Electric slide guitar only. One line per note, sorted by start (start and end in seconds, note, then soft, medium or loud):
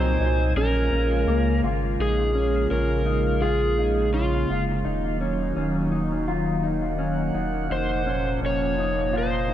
0.00 0.52 C5 loud
0.57 1.60 A#4 medium
2.01 2.68 G#4 medium
2.71 3.44 A#4 medium
3.42 4.09 G#4 medium
4.14 4.64 F4 medium
7.72 8.39 C5 medium
8.46 9.17 C#5 medium
9.18 9.54 C5 medium